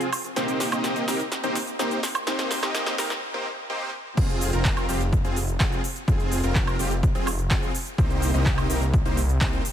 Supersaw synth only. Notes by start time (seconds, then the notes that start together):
0.36 A#3 C4 D#4 G4 C5
0.72 A#3 C4 D#4 G4 D#5
1.08 A#3 C4 D#4 G4 A#4
1.44 A#3 C4 D#4 G4 C5
1.79 A#3 C4 D#4 G4 C5
2.27 A#3 C4 D#4 G4 C5
2.63 A#3 C4 D#4 G4 D#5
2.98 A#3 C4 D#4 G4 A#4
3.34 A#3 C4 D#4 G4 C5
3.70 A#3 C4 D#4 G4 C5
4.17 C4 F4 G#4
4.53 C4 F4 A#4
4.89 C4 F4 G4
5.25 C4 F4 G#4
5.60 C4 F4 G#4
6.08 C4 F4 G#4
6.44 C4 F4 A#4
6.79 C4 F4 G4
7.15 C4 F4 G#4
7.51 C4 F4 G#4
7.98 A#3 C4 D#4 G4 C5
8.34 A#3 C4 D#4 G4 D#5
8.70 A#3 C4 D#4 G4 A#4
9.05 A#3 C4 D#4 G4 C5
9.41 A#3 C4 D#4 G4 C5